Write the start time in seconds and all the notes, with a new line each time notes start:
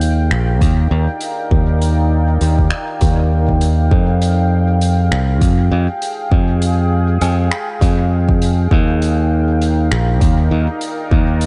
Already playing: D#2 D#4 A#4 F5 G5
0.01 D5, closed hi-hat
0.31 A#1, finger snap
0.61 D#2, kick, closed hi-hat
0.91 D#2
1.21 closed hi-hat
1.51 D#2, kick
1.82 closed hi-hat
2.41 D#2, closed hi-hat
2.59 kick
2.70 finger snap
3.01 D#2, kick, closed hi-hat
3.49 kick
3.61 closed hi-hat
3.91 F2 G#4, kick
4.22 closed hi-hat
4.81 closed hi-hat
5.11 C2, finger snap
5.41 F2, kick, closed hi-hat
5.71 F2
6.02 closed hi-hat
6.32 F2, kick
6.62 closed hi-hat
7.21 F2, closed hi-hat, low woodblock
7.52 finger snap
7.81 F2, kick, closed hi-hat
8.29 kick
8.42 closed hi-hat
8.71 D#2 D#4, kick
8.88 A#4
9.02 closed hi-hat
9.51 D5
9.62 closed hi-hat
9.91 A#1, finger snap
10.21 D#2, kick, closed hi-hat
10.51 D#2
10.81 closed hi-hat
11.11 D#2, kick
11.41 closed hi-hat